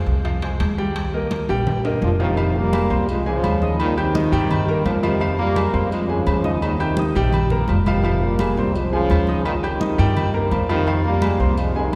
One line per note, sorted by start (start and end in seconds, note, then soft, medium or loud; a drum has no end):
0.00 0.19 G#3 medium
0.00 0.19 G#4 medium
0.00 0.19 C5 medium
0.06 0.56 C2 medium
0.06 high conga soft
0.25 0.39 F3 medium
0.25 0.40 F4 medium
0.25 0.40 F5 medium
0.25 high conga soft
0.25 high timbale medium
0.42 0.72 G#3 medium
0.42 0.72 G#4 medium
0.42 0.72 C5 medium
0.42 high conga soft
0.42 high timbale medium
0.60 1.43 D#2 medium
0.60 high conga medium
0.60 high timbale loud
0.78 1.07 G3 medium
0.78 1.07 G4 medium
0.78 1.07 G5 medium
0.78 high conga medium
0.96 high conga soft
0.96 high timbale medium
1.13 1.43 A#3 medium
1.13 1.43 A#4 medium
1.13 1.43 D#5 medium
1.13 high conga soft
1.31 high conga loud
1.31 high timbale medium
1.49 1.99 A#1 medium
1.49 1.78 G3 medium
1.49 1.78 G4 loud
1.49 1.79 G5 medium
1.49 high conga soft
1.49 high timbale medium
1.67 high conga soft
1.67 low conga medium
1.67 high timbale medium
1.85 2.14 A#3 medium
1.85 2.14 A#4 medium
1.85 2.14 D#5 medium
1.85 high conga soft
1.85 high timbale medium
2.02 2.85 F1 loud
2.02 2.11 A#2 medium
2.02 2.11 F3 medium
2.02 high conga medium
2.20 2.55 C3 medium
2.20 2.54 D#3 loud
2.20 2.34 F3 medium
2.20 2.34 F4 medium
2.20 2.35 F5 medium
2.20 low timbale medium
2.37 2.66 F3 medium
2.37 2.66 F4 loud
2.37 2.67 F5 loud
2.37 high conga soft
2.37 low agogo loud
2.56 3.10 G3 medium
2.56 3.09 A#3 loud
2.56 high conga soft
2.73 2.88 G#3 medium
2.73 2.87 G#4 medium
2.73 2.88 G#5 medium
2.73 high conga loud
2.73 low agogo loud
2.90 3.40 C2 medium
2.90 3.19 C4 medium
2.90 3.20 C5 medium
2.90 3.20 C6 medium
2.90 high conga soft
3.08 3.25 F3 medium
3.08 3.25 G#3 loud
3.08 high conga soft
3.08 low agogo medium
3.26 3.76 C#3 medium
3.26 3.76 F3 loud
3.26 3.55 G#3 medium
3.26 3.55 G#4 medium
3.26 3.55 G#5 medium
3.26 high conga soft
3.43 4.27 D#2 medium
3.43 high conga loud
3.43 low agogo loud
3.62 3.91 D#4 medium
3.62 3.91 D#5 medium
3.62 3.91 D#6 medium
3.62 high conga medium
3.80 3.97 A#2 medium
3.80 3.96 D#3 loud
3.80 high conga soft
3.80 low agogo loud
3.97 4.83 C3 medium
3.97 4.82 D#3 loud
3.97 4.12 G4 medium
3.97 4.12 G5 medium
3.97 4.12 G6 medium
3.97 high conga soft
3.97 low agogo medium
4.14 4.29 D#4 medium
4.14 4.29 D#5 medium
4.14 4.29 D#6 medium
4.14 high conga loud
4.32 4.82 G2 medium
4.32 4.61 G3 loud
4.32 4.61 G4 loud
4.32 4.62 G5 loud
4.32 high conga soft
4.32 low agogo medium
4.51 high conga soft
4.51 low conga medium
4.51 low agogo loud
4.68 4.97 A#3 medium
4.68 4.97 A#4 medium
4.68 4.97 A#5 medium
4.68 high conga soft
4.85 5.68 F2 medium
4.85 5.03 A#2 medium
4.85 5.02 F3 loud
4.85 high conga medium
4.85 low timbale medium
4.85 low agogo medium
5.03 5.37 C3 medium
5.03 5.36 D#3 loud
5.03 5.18 F3 medium
5.03 5.18 F4 medium
5.03 5.18 F5 medium
5.03 high conga medium
5.03 low agogo loud
5.20 5.50 F3 medium
5.20 5.50 F4 medium
5.20 5.50 F5 loud
5.20 high conga soft
5.20 low agogo medium
5.39 5.89 G3 medium
5.39 5.88 A#3 loud
5.39 high conga soft
5.56 5.71 G#3 medium
5.56 5.71 G#4 medium
5.56 5.71 G#5 medium
5.56 high conga loud
5.56 low agogo loud
5.73 6.23 F2 loud
5.73 6.03 C4 medium
5.73 6.03 C5 medium
5.73 6.03 C6 medium
5.73 high conga soft
5.91 6.07 F3 medium
5.91 6.08 G#3 loud
5.91 high conga soft
5.91 low agogo medium
6.08 6.63 C#3 medium
6.08 6.62 F3 loud
6.08 6.38 G#3 medium
6.08 6.38 G#4 medium
6.08 6.39 G#5 medium
6.08 high conga soft
6.27 7.10 D#2 loud
6.27 high conga medium
6.27 low agogo loud
6.44 6.74 D#4 medium
6.44 6.74 D#5 medium
6.44 6.74 D#6 medium
6.44 high conga medium
6.61 6.80 A#2 medium
6.61 6.76 D#3 loud
6.61 high conga soft
6.61 low agogo loud
6.78 7.38 C3 medium
6.78 7.37 D#3 medium
6.78 6.95 G4 medium
6.78 6.95 G5 medium
6.78 6.95 G6 medium
6.78 high conga soft
6.78 low agogo medium
6.97 7.13 D#4 medium
6.97 7.13 D#5 medium
6.97 7.13 D#6 medium
6.97 high conga loud
7.14 7.65 A#1 medium
7.14 7.45 G3 loud
7.14 7.45 G4 loud
7.14 7.45 G5 loud
7.14 high conga soft
7.14 low agogo medium
7.33 high conga soft
7.33 low conga medium
7.33 low agogo loud
7.50 7.80 A#3 medium
7.50 7.80 A#4 medium
7.50 7.81 A#5 medium
7.50 high conga soft
7.50 low conga medium
7.68 8.51 F1 medium
7.68 7.78 A#2 medium
7.68 7.76 F3 medium
7.68 high conga medium
7.68 low agogo medium
7.86 8.21 C3 medium
7.86 8.19 D#3 medium
7.86 8.01 F3 medium
7.86 8.02 F4 loud
7.86 8.02 F5 loud
7.86 high conga medium
7.86 low agogo loud
8.04 8.33 F3 medium
8.04 8.33 F4 loud
8.04 8.33 F5 medium
8.04 high conga soft
8.04 low agogo medium
8.21 8.76 G3 medium
8.21 8.75 A#3 loud
8.21 high conga soft
8.39 8.55 G#3 medium
8.39 8.55 G#4 medium
8.39 8.55 G#5 medium
8.39 high conga loud
8.39 low agogo loud
8.57 9.07 C2 medium
8.57 8.87 C4 medium
8.57 8.87 C5 medium
8.57 8.87 C6 medium
8.57 high conga soft
8.74 8.90 F3 medium
8.74 8.92 G#3 medium
8.74 high conga soft
8.74 low agogo medium
8.91 9.43 C#3 medium
8.91 9.41 F3 loud
8.91 9.22 G#3 medium
8.91 9.22 G#4 medium
8.91 9.22 G#5 medium
8.91 high conga soft
9.10 9.93 D#2 loud
9.10 high conga medium
9.10 low agogo loud
9.27 9.57 D#4 medium
9.27 9.57 D#5 medium
9.27 9.58 D#6 medium
9.27 high conga medium
9.45 9.55 A#2 medium
9.45 9.53 D#3 loud
9.45 high conga soft
9.45 low agogo loud
9.62 10.49 C3 medium
9.62 10.47 D#3 loud
9.62 9.78 G4 medium
9.62 9.78 G5 medium
9.62 9.78 G6 medium
9.62 high conga soft
9.62 low agogo loud
9.80 9.95 D#4 medium
9.80 9.96 D#5 medium
9.80 9.96 D#6 medium
9.80 high conga loud
9.98 10.48 G2 medium
9.98 10.28 G3 loud
9.98 10.28 G4 loud
9.98 10.28 G5 loud
9.98 high conga soft
9.98 low agogo medium
10.17 high conga soft
10.17 low conga medium
10.17 low agogo loud
10.34 10.63 A#3 medium
10.34 10.63 A#4 medium
10.34 10.63 A#5 medium
10.34 high conga soft
10.51 11.34 F2 loud
10.51 10.69 A#2 medium
10.51 10.68 F3 medium
10.51 high conga medium
10.51 low agogo medium
10.69 11.04 C3 medium
10.69 11.03 D#3 loud
10.69 10.84 F3 loud
10.69 10.84 F4 medium
10.69 10.84 F5 medium
10.69 low agogo loud
10.87 11.16 F3 medium
10.87 11.16 F4 medium
10.87 11.16 F5 loud
10.87 high conga soft
10.87 low agogo medium
11.05 11.55 G3 medium
11.05 11.54 A#3 loud
11.05 high conga soft
11.22 11.37 G#3 medium
11.22 11.37 G#4 medium
11.22 11.37 G#5 medium
11.22 high conga loud
11.22 low agogo loud
11.39 11.89 C2 medium
11.39 11.69 C4 medium
11.39 11.69 C5 medium
11.39 11.69 C6 medium
11.39 high conga soft
11.57 11.76 F3 medium
11.57 11.75 G#3 medium
11.57 high conga soft
11.57 low agogo medium
11.75 11.95 C3 medium
11.75 11.95 D#3 medium
11.75 11.95 G#3 medium
11.75 11.95 G#4 medium
11.75 11.95 G#5 medium
11.75 high conga soft